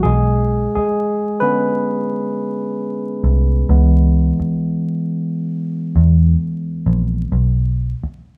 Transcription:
0.03 0.66 B1 medium
0.03 0.72 G#3 medium
0.03 0.74 G#4 medium
0.75 1.38 G#3 medium
0.75 1.42 G#4 medium
0.75 muted picked electric bass stroke soft
1.40 2.03 D3 medium
1.40 2.04 G#3 soft
1.40 3.19 B3 medium
1.40 2.04 C#4 medium
1.40 3.18 B4 medium
3.24 3.62 C2 medium
3.69 4.30 C#2 medium
3.69 7.28 E3 soft
3.69 7.28 G#3 soft
3.69 7.28 B3 medium
4.40 muted picked electric bass stroke soft
5.96 6.34 E2 medium
6.86 7.25 A#1 medium
7.32 7.93 B1 medium
8.03 muted picked electric bass stroke soft

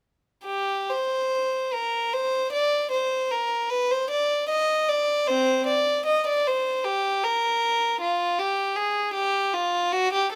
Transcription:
0.45 0.87 G4 soft
0.90 1.72 C5 soft
1.73 2.13 A#4 soft
2.13 2.53 C5 medium
2.52 2.91 D5 soft
2.92 3.30 C5 medium
3.31 3.70 A#4 medium
3.70 3.89 B4 medium
3.91 4.10 C5 medium
4.11 4.49 D5 medium
4.49 4.88 D#5 medium
4.89 5.28 D5 medium
5.28 5.64 C4 medium
5.28 5.67 C5 medium
5.67 6.05 D5 medium
6.06 6.25 D#5 medium
6.27 6.46 D5 medium
6.47 6.86 C5 medium
6.85 7.24 G4 medium
7.23 8.01 A#4 medium
8.01 8.38 F4 medium
8.39 8.77 G4 medium
8.76 9.14 G#4 medium
9.14 9.52 G4 medium
9.53 9.93 F4 medium
9.92 10.13 F#4 medium
10.13 10.33 G4 medium

